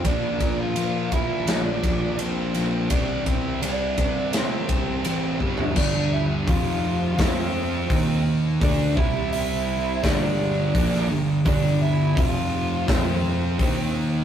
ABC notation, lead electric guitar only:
X:1
M:4/4
L:1/16
Q:1/4=84
K:Gm
V:1 name="Lead electric guitar"
[Dd]3 [Ff]3 [=E=e]2 [Dd]4 [Cc]4 | [Dd]2 [Cc]2 [Dd]4 [Cc]6 z2 | [Dd]2 [=E=e]2 [Ff]4 [Cc]6 z2 | [Dd]2 [=E=e]2 [Ee]4 [Dd]6 z2 |
[Dd]2 [=E=e]2 [Ff]4 [Cc]6 z2 |]